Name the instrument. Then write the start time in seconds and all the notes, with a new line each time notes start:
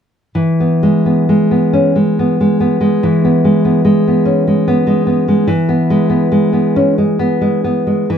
nylon-string guitar
0.35 E3
0.60 B3
0.83 G#3
1.06 B3
1.29 G#3
1.51 B3
1.73 C#4
1.96 G#3
2.19 B3
2.41 G#3
2.60 B3
2.81 G#3
3.03 E3
3.25 B3
3.44 G#3
3.65 B3
3.85 G#3
4.08 B3
4.25 C#4
4.48 G#3
4.68 B3
4.87 G#3
5.07 B3
5.28 G#3
5.48 E3
5.69 B3
5.90 G#3
6.10 B3
6.32 G#3
6.53 B3
6.76 C#4
6.98 G#3
7.19 B3
7.41 G#3
7.64 B3
7.87 G#3
8.10 E3